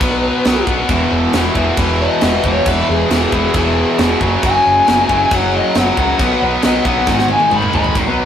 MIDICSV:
0, 0, Header, 1, 5, 480
1, 0, Start_track
1, 0, Tempo, 441501
1, 978, Time_signature, 4, 2, 24, 8
1, 8970, End_track
2, 0, Start_track
2, 0, Title_t, "Lead electric guitar"
2, 0, Program_c, 0, 29
2, 0, Note_on_c, 0, 71, 106
2, 717, Note_off_c, 0, 71, 0
2, 2194, Note_on_c, 0, 75, 117
2, 2654, Note_off_c, 0, 75, 0
2, 2670, Note_on_c, 0, 73, 116
2, 2899, Note_off_c, 0, 73, 0
2, 2919, Note_on_c, 0, 71, 89
2, 3143, Note_off_c, 0, 71, 0
2, 3154, Note_on_c, 0, 68, 104
2, 4545, Note_off_c, 0, 68, 0
2, 4850, Note_on_c, 0, 80, 107
2, 5767, Note_off_c, 0, 80, 0
2, 5813, Note_on_c, 0, 78, 95
2, 6030, Note_off_c, 0, 78, 0
2, 6052, Note_on_c, 0, 75, 102
2, 6269, Note_off_c, 0, 75, 0
2, 6291, Note_on_c, 0, 78, 105
2, 6506, Note_off_c, 0, 78, 0
2, 6519, Note_on_c, 0, 78, 112
2, 6975, Note_off_c, 0, 78, 0
2, 7225, Note_on_c, 0, 75, 110
2, 7454, Note_off_c, 0, 75, 0
2, 7459, Note_on_c, 0, 78, 106
2, 7924, Note_off_c, 0, 78, 0
2, 7962, Note_on_c, 0, 80, 96
2, 8183, Note_off_c, 0, 80, 0
2, 8210, Note_on_c, 0, 83, 98
2, 8419, Note_off_c, 0, 83, 0
2, 8432, Note_on_c, 0, 83, 108
2, 8658, Note_off_c, 0, 83, 0
2, 8970, End_track
3, 0, Start_track
3, 0, Title_t, "Distorted electric guitar"
3, 0, Program_c, 1, 30
3, 1, Note_on_c, 1, 47, 100
3, 5, Note_on_c, 1, 54, 103
3, 11, Note_on_c, 1, 59, 118
3, 479, Note_off_c, 1, 47, 0
3, 489, Note_off_c, 1, 54, 0
3, 492, Note_on_c, 1, 47, 80
3, 499, Note_off_c, 1, 59, 0
3, 502, Note_on_c, 1, 54, 104
3, 503, Note_on_c, 1, 59, 98
3, 726, Note_off_c, 1, 47, 0
3, 731, Note_off_c, 1, 54, 0
3, 739, Note_on_c, 1, 47, 90
3, 744, Note_on_c, 1, 54, 93
3, 745, Note_off_c, 1, 59, 0
3, 749, Note_on_c, 1, 59, 102
3, 965, Note_off_c, 1, 47, 0
3, 967, Note_off_c, 1, 54, 0
3, 974, Note_on_c, 1, 40, 97
3, 981, Note_on_c, 1, 47, 107
3, 983, Note_on_c, 1, 52, 110
3, 1452, Note_off_c, 1, 40, 0
3, 1452, Note_off_c, 1, 47, 0
3, 1457, Note_on_c, 1, 40, 89
3, 1465, Note_on_c, 1, 47, 89
3, 1466, Note_off_c, 1, 52, 0
3, 1471, Note_on_c, 1, 52, 101
3, 1672, Note_off_c, 1, 40, 0
3, 1685, Note_on_c, 1, 40, 92
3, 1687, Note_off_c, 1, 47, 0
3, 1690, Note_off_c, 1, 52, 0
3, 1700, Note_on_c, 1, 47, 87
3, 1703, Note_on_c, 1, 52, 102
3, 1918, Note_off_c, 1, 40, 0
3, 1931, Note_on_c, 1, 40, 109
3, 1932, Note_off_c, 1, 47, 0
3, 1939, Note_off_c, 1, 52, 0
3, 1945, Note_on_c, 1, 47, 108
3, 1952, Note_on_c, 1, 52, 113
3, 2404, Note_off_c, 1, 40, 0
3, 2412, Note_off_c, 1, 47, 0
3, 2416, Note_off_c, 1, 52, 0
3, 2417, Note_on_c, 1, 40, 84
3, 2425, Note_on_c, 1, 47, 93
3, 2429, Note_on_c, 1, 52, 99
3, 2640, Note_off_c, 1, 40, 0
3, 2646, Note_off_c, 1, 47, 0
3, 2653, Note_on_c, 1, 40, 84
3, 2655, Note_off_c, 1, 52, 0
3, 2659, Note_on_c, 1, 47, 92
3, 2668, Note_on_c, 1, 52, 100
3, 2886, Note_off_c, 1, 40, 0
3, 2888, Note_off_c, 1, 47, 0
3, 2898, Note_off_c, 1, 52, 0
3, 2899, Note_on_c, 1, 40, 92
3, 2902, Note_on_c, 1, 47, 99
3, 2911, Note_on_c, 1, 52, 107
3, 3356, Note_off_c, 1, 40, 0
3, 3369, Note_on_c, 1, 40, 81
3, 3371, Note_off_c, 1, 47, 0
3, 3373, Note_off_c, 1, 52, 0
3, 3384, Note_on_c, 1, 47, 84
3, 3387, Note_on_c, 1, 52, 102
3, 3611, Note_off_c, 1, 40, 0
3, 3615, Note_off_c, 1, 47, 0
3, 3620, Note_off_c, 1, 52, 0
3, 3624, Note_on_c, 1, 40, 87
3, 3628, Note_on_c, 1, 47, 97
3, 3633, Note_on_c, 1, 52, 101
3, 3842, Note_off_c, 1, 40, 0
3, 3850, Note_off_c, 1, 47, 0
3, 3854, Note_off_c, 1, 52, 0
3, 3855, Note_on_c, 1, 40, 105
3, 3863, Note_on_c, 1, 47, 121
3, 3867, Note_on_c, 1, 52, 116
3, 4318, Note_off_c, 1, 40, 0
3, 4327, Note_off_c, 1, 47, 0
3, 4331, Note_on_c, 1, 40, 81
3, 4332, Note_off_c, 1, 52, 0
3, 4340, Note_on_c, 1, 47, 90
3, 4345, Note_on_c, 1, 52, 97
3, 4554, Note_off_c, 1, 59, 0
3, 4562, Note_off_c, 1, 40, 0
3, 4566, Note_off_c, 1, 47, 0
3, 4569, Note_off_c, 1, 52, 0
3, 4577, Note_on_c, 1, 42, 98
3, 4584, Note_on_c, 1, 49, 114
3, 4588, Note_on_c, 1, 54, 107
3, 4796, Note_off_c, 1, 42, 0
3, 4802, Note_off_c, 1, 49, 0
3, 4809, Note_on_c, 1, 42, 99
3, 4815, Note_on_c, 1, 49, 106
3, 4816, Note_off_c, 1, 54, 0
3, 4829, Note_on_c, 1, 54, 118
3, 5284, Note_off_c, 1, 42, 0
3, 5290, Note_off_c, 1, 49, 0
3, 5297, Note_on_c, 1, 42, 84
3, 5299, Note_off_c, 1, 54, 0
3, 5303, Note_on_c, 1, 49, 89
3, 5312, Note_on_c, 1, 54, 100
3, 5513, Note_off_c, 1, 42, 0
3, 5520, Note_off_c, 1, 49, 0
3, 5526, Note_off_c, 1, 54, 0
3, 5526, Note_on_c, 1, 42, 86
3, 5533, Note_on_c, 1, 49, 91
3, 5540, Note_on_c, 1, 54, 98
3, 5758, Note_off_c, 1, 42, 0
3, 5762, Note_off_c, 1, 49, 0
3, 5772, Note_on_c, 1, 42, 107
3, 5773, Note_off_c, 1, 54, 0
3, 5775, Note_on_c, 1, 49, 106
3, 5786, Note_on_c, 1, 54, 125
3, 6249, Note_off_c, 1, 42, 0
3, 6254, Note_off_c, 1, 49, 0
3, 6256, Note_off_c, 1, 54, 0
3, 6262, Note_on_c, 1, 42, 86
3, 6267, Note_on_c, 1, 49, 104
3, 6269, Note_on_c, 1, 54, 100
3, 6479, Note_off_c, 1, 42, 0
3, 6482, Note_off_c, 1, 49, 0
3, 6487, Note_off_c, 1, 54, 0
3, 6492, Note_on_c, 1, 42, 92
3, 6495, Note_on_c, 1, 49, 95
3, 6500, Note_on_c, 1, 54, 98
3, 6717, Note_off_c, 1, 49, 0
3, 6717, Note_off_c, 1, 54, 0
3, 6721, Note_off_c, 1, 42, 0
3, 6721, Note_on_c, 1, 47, 99
3, 6730, Note_on_c, 1, 54, 110
3, 6736, Note_on_c, 1, 59, 111
3, 7195, Note_off_c, 1, 47, 0
3, 7200, Note_off_c, 1, 54, 0
3, 7204, Note_off_c, 1, 59, 0
3, 7208, Note_on_c, 1, 47, 83
3, 7213, Note_on_c, 1, 54, 87
3, 7217, Note_on_c, 1, 59, 95
3, 7433, Note_off_c, 1, 47, 0
3, 7442, Note_off_c, 1, 54, 0
3, 7446, Note_off_c, 1, 59, 0
3, 7446, Note_on_c, 1, 47, 90
3, 7455, Note_on_c, 1, 54, 94
3, 7459, Note_on_c, 1, 59, 98
3, 7677, Note_off_c, 1, 47, 0
3, 7682, Note_off_c, 1, 54, 0
3, 7683, Note_on_c, 1, 44, 113
3, 7684, Note_off_c, 1, 59, 0
3, 7690, Note_on_c, 1, 51, 100
3, 7696, Note_on_c, 1, 56, 116
3, 8148, Note_off_c, 1, 44, 0
3, 8159, Note_off_c, 1, 51, 0
3, 8161, Note_off_c, 1, 56, 0
3, 8161, Note_on_c, 1, 44, 90
3, 8172, Note_on_c, 1, 51, 98
3, 8174, Note_on_c, 1, 56, 93
3, 8401, Note_off_c, 1, 44, 0
3, 8408, Note_off_c, 1, 51, 0
3, 8414, Note_on_c, 1, 44, 91
3, 8415, Note_off_c, 1, 56, 0
3, 8421, Note_on_c, 1, 51, 101
3, 8428, Note_on_c, 1, 56, 105
3, 8641, Note_off_c, 1, 44, 0
3, 8645, Note_off_c, 1, 51, 0
3, 8648, Note_off_c, 1, 56, 0
3, 8657, Note_on_c, 1, 44, 98
3, 8665, Note_on_c, 1, 51, 113
3, 8767, Note_off_c, 1, 51, 0
3, 8770, Note_off_c, 1, 44, 0
3, 8771, Note_on_c, 1, 47, 98
3, 8775, Note_on_c, 1, 54, 93
3, 8779, Note_on_c, 1, 59, 99
3, 8970, Note_off_c, 1, 47, 0
3, 8970, Note_off_c, 1, 54, 0
3, 8970, Note_off_c, 1, 59, 0
3, 8970, End_track
4, 0, Start_track
4, 0, Title_t, "Picked electric bass"
4, 0, Program_c, 2, 34
4, 5, Note_on_c, 2, 35, 96
4, 317, Note_off_c, 2, 35, 0
4, 498, Note_on_c, 2, 35, 91
4, 652, Note_off_c, 2, 35, 0
4, 728, Note_on_c, 2, 35, 88
4, 886, Note_off_c, 2, 35, 0
4, 967, Note_on_c, 2, 28, 94
4, 1125, Note_off_c, 2, 28, 0
4, 1208, Note_on_c, 2, 28, 88
4, 1366, Note_off_c, 2, 28, 0
4, 1446, Note_on_c, 2, 28, 95
4, 1605, Note_off_c, 2, 28, 0
4, 1686, Note_on_c, 2, 28, 96
4, 1845, Note_off_c, 2, 28, 0
4, 1930, Note_on_c, 2, 28, 97
4, 2242, Note_off_c, 2, 28, 0
4, 2417, Note_on_c, 2, 28, 93
4, 2572, Note_off_c, 2, 28, 0
4, 2653, Note_on_c, 2, 28, 89
4, 2810, Note_off_c, 2, 28, 0
4, 2895, Note_on_c, 2, 28, 95
4, 3051, Note_off_c, 2, 28, 0
4, 3136, Note_on_c, 2, 28, 93
4, 3292, Note_off_c, 2, 28, 0
4, 3372, Note_on_c, 2, 28, 101
4, 3529, Note_off_c, 2, 28, 0
4, 3613, Note_on_c, 2, 28, 101
4, 3770, Note_off_c, 2, 28, 0
4, 3850, Note_on_c, 2, 28, 92
4, 4162, Note_off_c, 2, 28, 0
4, 4336, Note_on_c, 2, 28, 98
4, 4492, Note_off_c, 2, 28, 0
4, 4574, Note_on_c, 2, 30, 88
4, 4730, Note_off_c, 2, 30, 0
4, 4821, Note_on_c, 2, 30, 94
4, 4975, Note_off_c, 2, 30, 0
4, 5063, Note_on_c, 2, 30, 91
4, 5216, Note_off_c, 2, 30, 0
4, 5308, Note_on_c, 2, 30, 93
4, 5459, Note_off_c, 2, 30, 0
4, 5538, Note_on_c, 2, 30, 97
4, 5693, Note_off_c, 2, 30, 0
4, 5777, Note_on_c, 2, 30, 101
4, 6086, Note_off_c, 2, 30, 0
4, 6258, Note_on_c, 2, 30, 95
4, 6413, Note_off_c, 2, 30, 0
4, 6494, Note_on_c, 2, 37, 90
4, 6650, Note_off_c, 2, 37, 0
4, 6730, Note_on_c, 2, 35, 101
4, 6887, Note_off_c, 2, 35, 0
4, 6987, Note_on_c, 2, 35, 97
4, 7138, Note_off_c, 2, 35, 0
4, 7221, Note_on_c, 2, 35, 97
4, 7374, Note_off_c, 2, 35, 0
4, 7447, Note_on_c, 2, 35, 89
4, 7682, Note_on_c, 2, 32, 99
4, 7699, Note_off_c, 2, 35, 0
4, 7995, Note_off_c, 2, 32, 0
4, 8168, Note_on_c, 2, 32, 98
4, 8325, Note_off_c, 2, 32, 0
4, 8414, Note_on_c, 2, 32, 88
4, 8569, Note_off_c, 2, 32, 0
4, 8645, Note_on_c, 2, 32, 94
4, 8762, Note_off_c, 2, 32, 0
4, 8779, Note_on_c, 2, 35, 95
4, 8970, Note_off_c, 2, 35, 0
4, 8970, End_track
5, 0, Start_track
5, 0, Title_t, "Drums"
5, 9, Note_on_c, 9, 36, 116
5, 9, Note_on_c, 9, 49, 66
5, 118, Note_off_c, 9, 36, 0
5, 118, Note_off_c, 9, 49, 0
5, 486, Note_on_c, 9, 49, 63
5, 495, Note_on_c, 9, 38, 112
5, 595, Note_off_c, 9, 49, 0
5, 604, Note_off_c, 9, 38, 0
5, 729, Note_on_c, 9, 36, 91
5, 838, Note_off_c, 9, 36, 0
5, 965, Note_on_c, 9, 49, 66
5, 968, Note_on_c, 9, 36, 115
5, 1073, Note_off_c, 9, 49, 0
5, 1077, Note_off_c, 9, 36, 0
5, 1447, Note_on_c, 9, 49, 65
5, 1456, Note_on_c, 9, 38, 113
5, 1556, Note_off_c, 9, 49, 0
5, 1565, Note_off_c, 9, 38, 0
5, 1688, Note_on_c, 9, 36, 84
5, 1797, Note_off_c, 9, 36, 0
5, 1923, Note_on_c, 9, 49, 71
5, 1929, Note_on_c, 9, 36, 122
5, 2032, Note_off_c, 9, 49, 0
5, 2038, Note_off_c, 9, 36, 0
5, 2404, Note_on_c, 9, 49, 70
5, 2412, Note_on_c, 9, 38, 113
5, 2513, Note_off_c, 9, 49, 0
5, 2521, Note_off_c, 9, 38, 0
5, 2650, Note_on_c, 9, 36, 91
5, 2758, Note_off_c, 9, 36, 0
5, 2891, Note_on_c, 9, 49, 73
5, 2893, Note_on_c, 9, 36, 119
5, 3000, Note_off_c, 9, 49, 0
5, 3001, Note_off_c, 9, 36, 0
5, 3375, Note_on_c, 9, 49, 72
5, 3384, Note_on_c, 9, 38, 112
5, 3484, Note_off_c, 9, 49, 0
5, 3493, Note_off_c, 9, 38, 0
5, 3614, Note_on_c, 9, 36, 93
5, 3722, Note_off_c, 9, 36, 0
5, 3845, Note_on_c, 9, 49, 70
5, 3853, Note_on_c, 9, 36, 117
5, 3954, Note_off_c, 9, 49, 0
5, 3962, Note_off_c, 9, 36, 0
5, 4332, Note_on_c, 9, 49, 68
5, 4340, Note_on_c, 9, 38, 118
5, 4440, Note_off_c, 9, 49, 0
5, 4449, Note_off_c, 9, 38, 0
5, 4576, Note_on_c, 9, 36, 91
5, 4685, Note_off_c, 9, 36, 0
5, 4815, Note_on_c, 9, 49, 65
5, 4818, Note_on_c, 9, 36, 114
5, 4924, Note_off_c, 9, 49, 0
5, 4926, Note_off_c, 9, 36, 0
5, 5298, Note_on_c, 9, 49, 61
5, 5306, Note_on_c, 9, 38, 109
5, 5406, Note_off_c, 9, 49, 0
5, 5415, Note_off_c, 9, 38, 0
5, 5538, Note_on_c, 9, 36, 92
5, 5647, Note_off_c, 9, 36, 0
5, 5777, Note_on_c, 9, 36, 111
5, 5777, Note_on_c, 9, 49, 65
5, 5885, Note_off_c, 9, 49, 0
5, 5886, Note_off_c, 9, 36, 0
5, 6249, Note_on_c, 9, 49, 65
5, 6257, Note_on_c, 9, 38, 110
5, 6358, Note_off_c, 9, 49, 0
5, 6366, Note_off_c, 9, 38, 0
5, 6494, Note_on_c, 9, 36, 92
5, 6603, Note_off_c, 9, 36, 0
5, 6734, Note_on_c, 9, 36, 117
5, 6734, Note_on_c, 9, 49, 73
5, 6843, Note_off_c, 9, 36, 0
5, 6843, Note_off_c, 9, 49, 0
5, 7202, Note_on_c, 9, 49, 68
5, 7210, Note_on_c, 9, 38, 116
5, 7310, Note_off_c, 9, 49, 0
5, 7319, Note_off_c, 9, 38, 0
5, 7449, Note_on_c, 9, 36, 92
5, 7557, Note_off_c, 9, 36, 0
5, 7687, Note_on_c, 9, 36, 116
5, 7693, Note_on_c, 9, 38, 72
5, 7796, Note_off_c, 9, 36, 0
5, 7802, Note_off_c, 9, 38, 0
5, 7815, Note_on_c, 9, 38, 65
5, 7921, Note_on_c, 9, 48, 87
5, 7924, Note_off_c, 9, 38, 0
5, 8030, Note_off_c, 9, 48, 0
5, 8046, Note_on_c, 9, 48, 77
5, 8155, Note_off_c, 9, 48, 0
5, 8169, Note_on_c, 9, 47, 99
5, 8278, Note_off_c, 9, 47, 0
5, 8289, Note_on_c, 9, 45, 82
5, 8397, Note_off_c, 9, 45, 0
5, 8409, Note_on_c, 9, 43, 109
5, 8518, Note_off_c, 9, 43, 0
5, 8527, Note_on_c, 9, 43, 88
5, 8636, Note_off_c, 9, 43, 0
5, 8648, Note_on_c, 9, 36, 108
5, 8652, Note_on_c, 9, 49, 60
5, 8756, Note_off_c, 9, 36, 0
5, 8760, Note_off_c, 9, 49, 0
5, 8970, End_track
0, 0, End_of_file